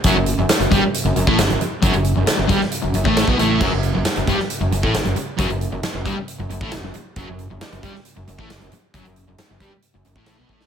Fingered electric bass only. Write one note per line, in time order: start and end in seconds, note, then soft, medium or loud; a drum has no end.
0.04 0.14 F#1 loud
0.15 0.36 F#1 medium
0.37 0.48 F#1 medium
0.49 muted fingered electric bass stroke soft
0.60 0.71 F#1 medium
0.72 0.82 G1 medium
0.82 muted fingered electric bass stroke soft
1.04 1.15 F#1 medium
1.16 1.26 F#1 medium
1.28 1.38 A1 medium
1.38 1.49 F#1 medium
1.50 1.59 F#1 medium
1.60 muted fingered electric bass stroke soft
1.83 1.93 F#1 medium
1.93 2.14 F#1 medium
2.16 2.27 F#1 medium
2.28 muted fingered electric bass stroke soft
2.39 2.49 F#1 medium
2.49 2.60 G1 medium
2.62 muted fingered electric bass stroke soft
2.84 2.94 F#1 medium
2.95 3.05 F#1 medium
3.05 3.26 A1 medium
3.28 3.38 B1 loud
3.39 3.60 A1 loud
3.61 3.71 F#1 medium
3.72 3.93 F#1 medium
3.96 4.05 F#1 medium
4.06 muted fingered electric bass stroke soft
4.17 4.27 F#1 medium
4.27 4.38 G1 medium
4.39 muted fingered electric bass stroke soft
4.60 4.71 F#1 medium
4.71 4.82 F#1 medium
4.84 4.93 A1 medium
4.94 5.04 F#1 medium
5.05 5.15 F#1 medium
5.17 muted fingered electric bass stroke soft
5.39 5.49 F#1 medium
5.49 5.70 F#1 medium
5.72 5.82 F#1 medium
5.84 muted fingered electric bass stroke soft
5.94 6.04 F#1 medium
6.06 6.16 G1 loud
6.17 muted fingered electric bass stroke soft
6.39 6.49 F#1 medium
6.50 6.60 F#1 medium
6.61 6.71 A1 loud
6.73 6.83 F#1 medium
6.83 6.94 F#1 medium
6.96 muted fingered electric bass stroke soft
7.16 7.27 F#1 loud
7.29 7.49 F#1 medium
7.51 7.61 F#1 medium
7.62 muted fingered electric bass stroke soft
7.72 7.83 F#1 medium
7.83 7.93 G1 medium
7.95 muted fingered electric bass stroke soft
8.17 8.27 F#1 medium
8.28 8.38 F#1 medium
8.38 8.49 A1 loud
8.51 8.61 F#1 medium
8.62 8.72 F#1 medium
8.73 muted fingered electric bass stroke soft
8.94 9.05 F#1 medium
9.05 9.26 F#1 medium
9.28 9.38 F#1 medium
9.39 muted fingered electric bass stroke soft
9.50 9.60 F#1 medium
9.61 9.71 G1 medium
9.72 muted fingered electric bass stroke soft
9.95 10.05 F#1 medium
10.06 10.15 F#1 medium
10.16 10.37 A1 medium
10.39 10.48 B1 medium
10.49 10.67 A1 medium